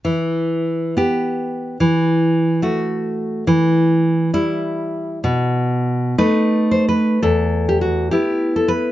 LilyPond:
\new Staff \with { instrumentName = "Nylon-string guitar" } { \time 6/8 \key e \minor \tempo 4. = 69 << { r2. | r2. | r2. | r4. b'8. c''16 b'8 |
a'8. g'16 fis'8 g'8. a'16 b'8 | } \\ { e4. <b g'>4. | e4. <a fis'>4. | e4. <g e'>4. | b,4. <a dis'>4. |
e,4. <b e'>4. | } >> }